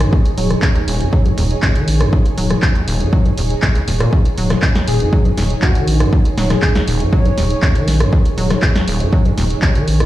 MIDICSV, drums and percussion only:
0, 0, Header, 1, 2, 480
1, 0, Start_track
1, 0, Key_signature, -6, "minor"
1, 0, Tempo, 500000
1, 122, Time_signature, 4, 2, 24, 8
1, 9654, End_track
2, 0, Start_track
2, 0, Title_t, "Drums"
2, 5, Note_on_c, 9, 37, 76
2, 5, Note_on_c, 9, 42, 70
2, 101, Note_off_c, 9, 37, 0
2, 101, Note_off_c, 9, 42, 0
2, 121, Note_on_c, 9, 36, 125
2, 217, Note_off_c, 9, 36, 0
2, 244, Note_on_c, 9, 42, 53
2, 340, Note_off_c, 9, 42, 0
2, 361, Note_on_c, 9, 46, 107
2, 457, Note_off_c, 9, 46, 0
2, 485, Note_on_c, 9, 37, 60
2, 485, Note_on_c, 9, 42, 62
2, 581, Note_off_c, 9, 37, 0
2, 581, Note_off_c, 9, 42, 0
2, 597, Note_on_c, 9, 39, 124
2, 601, Note_on_c, 9, 36, 114
2, 693, Note_off_c, 9, 39, 0
2, 697, Note_off_c, 9, 36, 0
2, 725, Note_on_c, 9, 42, 34
2, 821, Note_off_c, 9, 42, 0
2, 842, Note_on_c, 9, 46, 97
2, 938, Note_off_c, 9, 46, 0
2, 965, Note_on_c, 9, 42, 66
2, 1061, Note_off_c, 9, 42, 0
2, 1082, Note_on_c, 9, 36, 122
2, 1178, Note_off_c, 9, 36, 0
2, 1205, Note_on_c, 9, 42, 36
2, 1301, Note_off_c, 9, 42, 0
2, 1322, Note_on_c, 9, 46, 114
2, 1418, Note_off_c, 9, 46, 0
2, 1445, Note_on_c, 9, 42, 59
2, 1541, Note_off_c, 9, 42, 0
2, 1557, Note_on_c, 9, 39, 116
2, 1562, Note_on_c, 9, 36, 108
2, 1653, Note_off_c, 9, 39, 0
2, 1658, Note_off_c, 9, 36, 0
2, 1685, Note_on_c, 9, 42, 50
2, 1781, Note_off_c, 9, 42, 0
2, 1802, Note_on_c, 9, 46, 94
2, 1898, Note_off_c, 9, 46, 0
2, 1925, Note_on_c, 9, 37, 83
2, 1925, Note_on_c, 9, 42, 67
2, 2021, Note_off_c, 9, 37, 0
2, 2021, Note_off_c, 9, 42, 0
2, 2042, Note_on_c, 9, 36, 123
2, 2138, Note_off_c, 9, 36, 0
2, 2165, Note_on_c, 9, 42, 52
2, 2261, Note_off_c, 9, 42, 0
2, 2281, Note_on_c, 9, 46, 112
2, 2377, Note_off_c, 9, 46, 0
2, 2404, Note_on_c, 9, 37, 64
2, 2404, Note_on_c, 9, 42, 61
2, 2500, Note_off_c, 9, 37, 0
2, 2500, Note_off_c, 9, 42, 0
2, 2517, Note_on_c, 9, 39, 114
2, 2522, Note_on_c, 9, 36, 108
2, 2613, Note_off_c, 9, 39, 0
2, 2618, Note_off_c, 9, 36, 0
2, 2644, Note_on_c, 9, 42, 36
2, 2740, Note_off_c, 9, 42, 0
2, 2761, Note_on_c, 9, 46, 96
2, 2857, Note_off_c, 9, 46, 0
2, 2884, Note_on_c, 9, 42, 65
2, 2980, Note_off_c, 9, 42, 0
2, 3002, Note_on_c, 9, 36, 123
2, 3098, Note_off_c, 9, 36, 0
2, 3125, Note_on_c, 9, 42, 35
2, 3221, Note_off_c, 9, 42, 0
2, 3240, Note_on_c, 9, 46, 116
2, 3336, Note_off_c, 9, 46, 0
2, 3363, Note_on_c, 9, 42, 59
2, 3459, Note_off_c, 9, 42, 0
2, 3475, Note_on_c, 9, 39, 109
2, 3481, Note_on_c, 9, 36, 110
2, 3571, Note_off_c, 9, 39, 0
2, 3577, Note_off_c, 9, 36, 0
2, 3604, Note_on_c, 9, 42, 53
2, 3700, Note_off_c, 9, 42, 0
2, 3721, Note_on_c, 9, 46, 97
2, 3817, Note_off_c, 9, 46, 0
2, 3844, Note_on_c, 9, 37, 85
2, 3844, Note_on_c, 9, 42, 65
2, 3940, Note_off_c, 9, 37, 0
2, 3940, Note_off_c, 9, 42, 0
2, 3961, Note_on_c, 9, 36, 117
2, 4057, Note_off_c, 9, 36, 0
2, 4084, Note_on_c, 9, 42, 52
2, 4180, Note_off_c, 9, 42, 0
2, 4201, Note_on_c, 9, 46, 103
2, 4297, Note_off_c, 9, 46, 0
2, 4323, Note_on_c, 9, 37, 68
2, 4323, Note_on_c, 9, 38, 37
2, 4323, Note_on_c, 9, 42, 61
2, 4419, Note_off_c, 9, 37, 0
2, 4419, Note_off_c, 9, 38, 0
2, 4419, Note_off_c, 9, 42, 0
2, 4435, Note_on_c, 9, 39, 117
2, 4441, Note_on_c, 9, 36, 109
2, 4531, Note_off_c, 9, 39, 0
2, 4537, Note_off_c, 9, 36, 0
2, 4563, Note_on_c, 9, 38, 62
2, 4563, Note_on_c, 9, 42, 33
2, 4659, Note_off_c, 9, 38, 0
2, 4659, Note_off_c, 9, 42, 0
2, 4680, Note_on_c, 9, 46, 94
2, 4776, Note_off_c, 9, 46, 0
2, 4802, Note_on_c, 9, 42, 66
2, 4898, Note_off_c, 9, 42, 0
2, 4921, Note_on_c, 9, 36, 117
2, 5017, Note_off_c, 9, 36, 0
2, 5043, Note_on_c, 9, 42, 37
2, 5139, Note_off_c, 9, 42, 0
2, 5160, Note_on_c, 9, 38, 38
2, 5160, Note_on_c, 9, 46, 115
2, 5256, Note_off_c, 9, 38, 0
2, 5256, Note_off_c, 9, 46, 0
2, 5283, Note_on_c, 9, 42, 57
2, 5379, Note_off_c, 9, 42, 0
2, 5395, Note_on_c, 9, 39, 106
2, 5401, Note_on_c, 9, 36, 109
2, 5491, Note_off_c, 9, 39, 0
2, 5497, Note_off_c, 9, 36, 0
2, 5523, Note_on_c, 9, 42, 52
2, 5619, Note_off_c, 9, 42, 0
2, 5640, Note_on_c, 9, 46, 92
2, 5736, Note_off_c, 9, 46, 0
2, 5763, Note_on_c, 9, 37, 84
2, 5763, Note_on_c, 9, 42, 65
2, 5859, Note_off_c, 9, 37, 0
2, 5859, Note_off_c, 9, 42, 0
2, 5881, Note_on_c, 9, 36, 117
2, 5977, Note_off_c, 9, 36, 0
2, 6003, Note_on_c, 9, 42, 54
2, 6099, Note_off_c, 9, 42, 0
2, 6121, Note_on_c, 9, 38, 61
2, 6121, Note_on_c, 9, 46, 96
2, 6217, Note_off_c, 9, 38, 0
2, 6217, Note_off_c, 9, 46, 0
2, 6243, Note_on_c, 9, 37, 65
2, 6243, Note_on_c, 9, 38, 37
2, 6243, Note_on_c, 9, 42, 63
2, 6339, Note_off_c, 9, 37, 0
2, 6339, Note_off_c, 9, 38, 0
2, 6339, Note_off_c, 9, 42, 0
2, 6355, Note_on_c, 9, 39, 113
2, 6361, Note_on_c, 9, 36, 103
2, 6451, Note_off_c, 9, 39, 0
2, 6457, Note_off_c, 9, 36, 0
2, 6483, Note_on_c, 9, 38, 61
2, 6483, Note_on_c, 9, 42, 37
2, 6579, Note_off_c, 9, 38, 0
2, 6579, Note_off_c, 9, 42, 0
2, 6600, Note_on_c, 9, 46, 89
2, 6696, Note_off_c, 9, 46, 0
2, 6723, Note_on_c, 9, 42, 67
2, 6819, Note_off_c, 9, 42, 0
2, 6841, Note_on_c, 9, 36, 112
2, 6937, Note_off_c, 9, 36, 0
2, 6964, Note_on_c, 9, 42, 37
2, 7060, Note_off_c, 9, 42, 0
2, 7081, Note_on_c, 9, 38, 40
2, 7081, Note_on_c, 9, 46, 109
2, 7177, Note_off_c, 9, 38, 0
2, 7177, Note_off_c, 9, 46, 0
2, 7204, Note_on_c, 9, 42, 63
2, 7300, Note_off_c, 9, 42, 0
2, 7317, Note_on_c, 9, 39, 104
2, 7321, Note_on_c, 9, 36, 104
2, 7413, Note_off_c, 9, 39, 0
2, 7417, Note_off_c, 9, 36, 0
2, 7444, Note_on_c, 9, 42, 54
2, 7540, Note_off_c, 9, 42, 0
2, 7561, Note_on_c, 9, 38, 37
2, 7561, Note_on_c, 9, 46, 95
2, 7657, Note_off_c, 9, 38, 0
2, 7657, Note_off_c, 9, 46, 0
2, 7684, Note_on_c, 9, 37, 88
2, 7684, Note_on_c, 9, 42, 66
2, 7780, Note_off_c, 9, 37, 0
2, 7780, Note_off_c, 9, 42, 0
2, 7801, Note_on_c, 9, 36, 118
2, 7897, Note_off_c, 9, 36, 0
2, 7924, Note_on_c, 9, 42, 54
2, 8020, Note_off_c, 9, 42, 0
2, 8042, Note_on_c, 9, 46, 100
2, 8138, Note_off_c, 9, 46, 0
2, 8164, Note_on_c, 9, 37, 66
2, 8164, Note_on_c, 9, 38, 34
2, 8164, Note_on_c, 9, 42, 67
2, 8260, Note_off_c, 9, 37, 0
2, 8260, Note_off_c, 9, 38, 0
2, 8260, Note_off_c, 9, 42, 0
2, 8276, Note_on_c, 9, 39, 114
2, 8280, Note_on_c, 9, 36, 106
2, 8372, Note_off_c, 9, 39, 0
2, 8376, Note_off_c, 9, 36, 0
2, 8405, Note_on_c, 9, 38, 61
2, 8405, Note_on_c, 9, 42, 37
2, 8501, Note_off_c, 9, 38, 0
2, 8501, Note_off_c, 9, 42, 0
2, 8521, Note_on_c, 9, 46, 90
2, 8617, Note_off_c, 9, 46, 0
2, 8643, Note_on_c, 9, 42, 72
2, 8739, Note_off_c, 9, 42, 0
2, 8761, Note_on_c, 9, 36, 111
2, 8857, Note_off_c, 9, 36, 0
2, 8884, Note_on_c, 9, 42, 37
2, 8980, Note_off_c, 9, 42, 0
2, 9001, Note_on_c, 9, 38, 39
2, 9001, Note_on_c, 9, 46, 106
2, 9097, Note_off_c, 9, 38, 0
2, 9097, Note_off_c, 9, 46, 0
2, 9124, Note_on_c, 9, 42, 66
2, 9220, Note_off_c, 9, 42, 0
2, 9235, Note_on_c, 9, 39, 110
2, 9241, Note_on_c, 9, 36, 107
2, 9331, Note_off_c, 9, 39, 0
2, 9337, Note_off_c, 9, 36, 0
2, 9363, Note_on_c, 9, 42, 55
2, 9459, Note_off_c, 9, 42, 0
2, 9481, Note_on_c, 9, 46, 85
2, 9577, Note_off_c, 9, 46, 0
2, 9603, Note_on_c, 9, 37, 89
2, 9603, Note_on_c, 9, 42, 72
2, 9654, Note_off_c, 9, 37, 0
2, 9654, Note_off_c, 9, 42, 0
2, 9654, End_track
0, 0, End_of_file